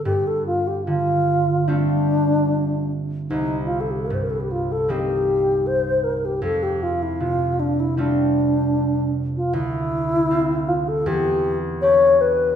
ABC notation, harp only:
X:1
M:4/4
L:1/8
Q:1/4=77
K:F
V:1 name="Harp"
[G,,G,A,CF]2 D,2 [G,A,CF]4 | C,,2 G,,2 [G,B,C_E]4 | F,,2 C,2 [G,A,CF]4 | D,,2 [CF]2 E,,2 [DG]2 |]